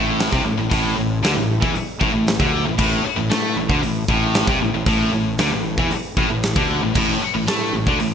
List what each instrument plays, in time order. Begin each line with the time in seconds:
Already playing: fingered electric bass A1, distorted electric guitar A2
0.19 snare, open hi-hat
0.32 fingered electric bass C2, distorted electric guitar C3, kick
0.45 fingered electric bass A1, distorted electric guitar A2
0.58 fingered electric bass A1, distorted electric guitar A2
0.70 fingered electric bass A1, distorted electric guitar A2, kick, open hi-hat
0.97 fingered electric bass A1, distorted electric guitar A2
1.23 fingered electric bass D2, distorted electric guitar D3, snare, open hi-hat
1.36 fingered electric bass A1, distorted electric guitar A2
1.62 fingered electric bass E2, distorted electric guitar E3, kick
1.74 muted distorted electric guitar stroke, muted fingered electric bass stroke, open hi-hat
2.01 fingered electric bass A1, distorted electric guitar A2, kick
2.14 fingered electric bass A1, distorted electric guitar A2
2.27 snare, open hi-hat
2.40 fingered electric bass D2, distorted electric guitar D3, kick
2.66 fingered electric bass A1, distorted electric guitar A2
2.78 fingered electric bass A1, distorted electric guitar A2, kick, crash
3.04 muted fingered electric bass stroke, muted distorted electric guitar stroke
3.17 fingered electric bass A1, distorted electric guitar A2
3.30 fingered electric bass A2, distorted electric guitar A3, snare, open hi-hat
3.56 fingered electric bass A1, distorted electric guitar A2
3.69 fingered electric bass D2, distorted electric guitar D3, kick
3.82 fingered electric bass A1, distorted electric guitar A2, open hi-hat
4.08 fingered electric bass A1, distorted electric guitar A2, kick
4.34 snare, open hi-hat
4.47 fingered electric bass C2, distorted electric guitar C3, kick
4.61 fingered electric bass A1, distorted electric guitar A2
4.73 fingered electric bass A1, distorted electric guitar A2
4.86 fingered electric bass A1, distorted electric guitar A2, kick, open hi-hat
5.13 fingered electric bass A1, distorted electric guitar A2
5.38 fingered electric bass D2, distorted electric guitar D3, snare, open hi-hat
5.52 fingered electric bass A1, distorted electric guitar A2
5.77 fingered electric bass E2, distorted electric guitar E3, kick
5.91 muted fingered electric bass stroke, muted distorted electric guitar stroke, open hi-hat
6.17 fingered electric bass A1, distorted electric guitar A2, kick
6.30 fingered electric bass A1, distorted electric guitar A2
6.43 snare, open hi-hat
6.56 fingered electric bass D2, distorted electric guitar D3, kick
6.83 fingered electric bass A1, distorted electric guitar A2
6.95 fingered electric bass A1, distorted electric guitar A2, kick, crash
7.22 muted fingered electric bass stroke, muted distorted electric guitar stroke
7.34 fingered electric bass A1, distorted electric guitar A2
7.47 fingered electric bass A2, distorted electric guitar A3, snare, open hi-hat
7.73 fingered electric bass A1, distorted electric guitar A2
7.87 fingered electric bass D2, distorted electric guitar D3, kick
7.99 fingered electric bass A1, distorted electric guitar A2, open hi-hat